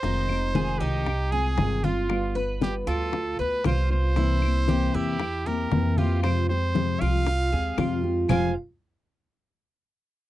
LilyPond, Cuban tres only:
\new Staff \with { instrumentName = "Cuban tres" } { \time 4/4 \key f \minor \tempo 4 = 116 ees'4 aes'8 ees'4 aes'4 f'8~ | f'8 b'4 f'4 b'8 f'4 | e'4 g'8 e'4 g'4 f'8~ | f'8 r4 f'4 aes'8 f'4 |
<f' c'' f''>8 r2. r8 | }